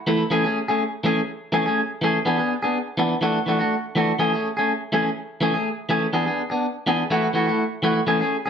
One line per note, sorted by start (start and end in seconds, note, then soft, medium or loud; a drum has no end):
0.07 0.23 E3 medium
0.07 0.23 A3 medium
0.07 0.23 E4 medium
0.07 muted clean electric guitar stroke medium
0.31 0.44 E3 medium
0.31 0.45 A3 medium
0.31 0.45 C#4 medium
0.31 0.43 G#4 medium
0.44 0.59 A3 soft
0.44 0.59 C#4 soft
0.44 0.58 G#4 medium
0.68 0.83 A3 soft
0.68 0.83 C#4 soft
0.68 0.82 G#4 medium
1.04 1.20 E3 medium
1.04 1.20 A3 medium
1.04 1.20 C#4 medium
1.04 1.21 G#4 medium
1.52 1.66 E3 medium
1.52 1.66 A3 medium
1.52 1.66 C#4 medium
1.52 1.65 G#4 medium
1.66 1.81 A3 soft
1.66 1.80 C#4 medium
1.66 1.80 G#4 medium
2.02 2.17 E3 medium
2.02 2.18 A3 medium
2.02 2.18 C#4 medium
2.02 2.19 G#4 medium
2.25 2.39 E3 medium
2.25 2.39 B3 medium
2.25 2.38 D4 medium
2.25 2.37 G#4 medium
2.38 2.54 B3 soft
2.38 2.53 D4 soft
2.38 2.52 G#4 medium
2.63 2.78 B3 soft
2.63 2.77 D4 soft
2.63 2.77 G#4 medium
2.98 3.14 E3 medium
2.98 3.14 B3 medium
2.98 3.15 D4 medium
2.98 muted clean electric guitar stroke medium
3.21 3.38 E3 medium
3.21 3.38 A3 medium
3.21 3.38 D4 medium
3.21 3.39 F#4 medium
3.46 3.60 E3 medium
3.46 3.60 A3 medium
3.46 3.59 D4 medium
3.46 3.58 F#4 medium
3.59 3.75 A3 soft
3.59 3.74 D4 soft
3.59 3.74 F#4 medium
3.95 4.11 E3 medium
3.95 4.12 A3 medium
3.95 4.12 D4 medium
3.95 4.12 F#4 medium
4.19 4.33 E3 medium
4.19 4.33 A3 medium
4.19 4.33 C#4 medium
4.19 4.32 G#4 medium
4.33 4.48 A3 soft
4.33 4.48 C#4 soft
4.33 4.47 G#4 soft
4.57 4.72 A3 soft
4.57 4.72 C#4 soft
4.57 4.71 G#4 soft
4.92 5.08 E3 medium
4.92 5.09 A3 medium
4.92 5.09 C#4 medium
4.92 5.09 G#4 medium
5.41 5.55 E3 medium
5.41 5.55 A3 medium
5.41 5.54 C#4 medium
5.41 5.53 G#4 medium
5.54 5.70 A3 soft
5.54 5.68 G#4 medium
5.54 muted clean electric guitar stroke soft
5.89 6.05 E3 medium
5.89 6.06 A3 medium
5.89 6.06 C#4 medium
5.89 6.06 G#4 medium
6.13 6.27 E3 medium
6.13 6.27 B3 medium
6.13 6.26 D4 medium
6.13 6.25 G#4 medium
6.26 6.42 B3 soft
6.26 6.41 D4 soft
6.26 6.41 G#4 medium
6.50 6.66 B3 soft
6.50 6.66 D4 soft
6.50 muted clean electric guitar stroke medium
6.87 7.03 E3 medium
6.87 7.03 B3 medium
6.87 7.03 D4 medium
6.87 7.04 G#4 medium
7.10 7.27 E3 medium
7.10 7.27 A3 medium
7.10 7.27 E4 medium
7.10 7.28 F#4 medium
7.33 7.48 E3 medium
7.33 7.48 A3 medium
7.33 7.47 E4 medium
7.33 7.46 F#4 medium
7.47 7.63 A3 soft
7.47 7.63 E4 soft
7.47 7.62 F#4 medium
7.83 7.99 E3 medium
7.83 8.00 A3 medium
7.83 8.00 E4 medium
7.83 8.00 F#4 medium
8.07 8.21 E3 medium
8.07 8.21 A3 medium
8.07 8.21 C#4 medium
8.07 8.20 G#4 medium
8.21 8.37 A3 soft
8.21 8.36 C#4 soft
8.21 8.36 G#4 medium
8.46 8.50 G#4 medium